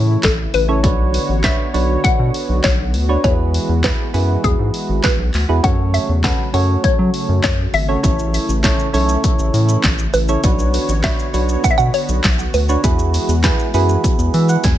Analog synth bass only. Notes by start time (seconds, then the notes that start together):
Already playing: A2
0.24 A1
0.54 A1
0.84 B1
1.29 A1
1.74 B1
2.04 B2
2.19 B2
2.49 B1
2.64 B1
2.94 D2
3.24 E2
3.69 E2
4.14 F#2
4.44 E2
4.59 G#2
4.89 G#1
5.19 B1
5.34 D2
5.49 E2
5.64 F#2
6.09 E2
6.54 F#2
6.84 F#3
6.99 F#3
7.29 F#2
7.44 F#2
7.73 G#1
8.04 A1
8.49 A1
8.94 B1
9.39 A1
9.54 A2
9.84 A1
10.14 A1
10.44 B1
10.89 A1
11.34 B1
11.64 B2
11.79 B2
12.09 B1
12.24 B1
12.54 D2
12.84 E2
13.28 E2
13.74 F#2
14.19 E2
14.34 E3
14.64 E2